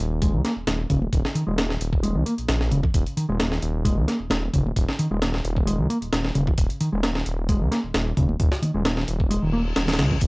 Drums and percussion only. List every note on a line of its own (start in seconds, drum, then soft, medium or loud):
0.22 kick loud
0.22 closed hi-hat medium
0.45 snare soft
0.45 closed hi-hat medium
0.67 snare loud
0.67 closed hi-hat medium
0.67 high conga loud
0.90 kick medium
0.90 closed hi-hat medium
1.02 high conga medium
1.13 kick loud
1.13 closed hi-hat medium
1.25 snare medium
1.35 closed hi-hat medium
1.58 snare loud
1.58 closed hi-hat medium
1.70 snare medium
1.81 closed hi-hat medium
1.93 kick loud
2.04 closed hi-hat medium
2.26 closed hi-hat medium
2.26 high conga medium
2.38 closed hi-hat soft
2.49 snare loud
2.49 closed hi-hat medium
2.61 snare soft
2.72 closed hi-hat medium
2.83 kick medium
2.83 low conga medium
2.94 kick loud
2.94 closed hi-hat medium
3.06 closed hi-hat soft
3.17 closed hi-hat medium
3.40 snare loud
3.40 closed hi-hat medium
3.52 snare medium
3.62 closed hi-hat medium
3.85 kick loud
3.85 closed hi-hat medium
4.08 snare soft
4.08 closed hi-hat medium
4.30 snare loud
4.30 closed hi-hat medium
4.30 high conga medium
4.54 kick medium
4.54 closed hi-hat medium
4.66 high conga medium
4.76 kick loud
4.76 closed hi-hat medium
4.89 snare medium
4.99 closed hi-hat medium
5.22 snare loud
5.22 closed hi-hat medium
5.34 snare soft
5.45 closed hi-hat medium
5.57 kick medium
5.67 closed hi-hat medium
5.90 closed hi-hat medium
6.02 closed hi-hat soft
6.13 snare loud
6.13 closed hi-hat medium
6.25 snare soft
6.35 closed hi-hat medium
6.47 kick medium
6.47 low conga medium
6.58 kick loud
6.58 closed hi-hat medium
6.70 closed hi-hat soft
6.81 closed hi-hat medium
7.03 snare loud
7.03 closed hi-hat medium
7.15 snare medium
7.26 closed hi-hat medium
7.49 kick loud
7.49 closed hi-hat medium
7.72 snare soft
7.72 closed hi-hat medium
7.94 snare loud
7.94 closed hi-hat medium
7.94 high conga medium
8.17 kick medium
8.17 closed hi-hat medium
8.29 high conga medium
8.40 kick loud
8.40 closed hi-hat medium
8.52 snare medium
8.63 closed hi-hat medium
8.63 high conga medium
8.85 snare loud
8.85 closed hi-hat medium
8.97 snare medium
9.08 closed hi-hat medium
9.20 kick medium
9.31 closed hi-hat medium
9.53 high conga soft
9.76 snare loud
9.76 closed hi-hat medium
9.87 snare medium
9.87 closed hi-hat medium
9.87 low conga medium
9.93 snare medium
9.93 closed hi-hat medium
9.99 snare loud
9.99 closed hi-hat medium
10.11 kick medium
10.11 low conga loud
10.21 kick loud
10.21 closed hi-hat medium